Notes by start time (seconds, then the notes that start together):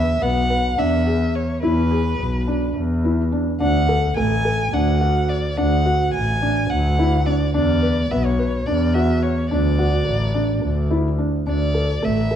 Already playing: E2 E5
0.21 B1 B3 F#5
0.50 B4
0.78 E2 D4 E5
1.06 G#4
1.35 C#5
1.63 E2 E4 B4
1.91 G#4
2.19 B1
2.47 D4
2.76 E2
3.04 E4
3.32 D4
3.60 D2 D4 F#5
3.88 A4
4.16 A1 A3 G#5
4.45 A4
4.73 D2 D4 F#5
5.01 F#4
5.29 D5
5.57 D2 D4 F#5
5.86 F#4
6.14 A1 G#5
6.42 D4
6.70 D2 F#5
6.99 E4
7.26 D4 D5
7.54 E2 D4 D5
7.82 B4
8.11 B1 B3 E5
8.24 C#5
8.39 B4
8.66 E2 D4 D5
8.94 F#4 E5
9.23 C#5
9.50 D2 D4 D5
9.79 F#4
10.07 A1
10.34 D4
10.64 D2
10.90 E4
11.18 D4
11.47 D2 D4 D5
11.74 A4
12.02 A1 A3 E5
12.31 A4